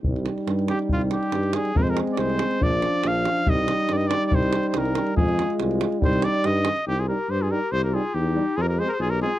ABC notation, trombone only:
X:1
M:2/4
L:1/8
Q:"Swing 16ths" 1/4=141
K:Cm
V:1 name="Trombone" clef=bass
G,4- | G,4 | A,4 | F,3 z |
G,4- | G,4 | A,4 | G,3 z |
z G, z G, | z G, z G, | z A, z A, |]